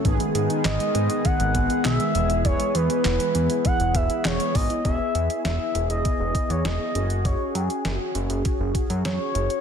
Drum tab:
HH |xxxxxxxxxxxxxxxx|xxxxxxxxxxxxxxox|x-xxx-xxx-xxx-xx|x-xxx-xxx-xxx-xx|
CP |----x-------x---|----x-------x---|----------------|----------------|
SD |----o-------o---|----o-------o---|----o-------o---|----o-------o---|
BD |o-------o-o-----|o-------o-o---o-|o-------o-o-----|o-------o-o-----|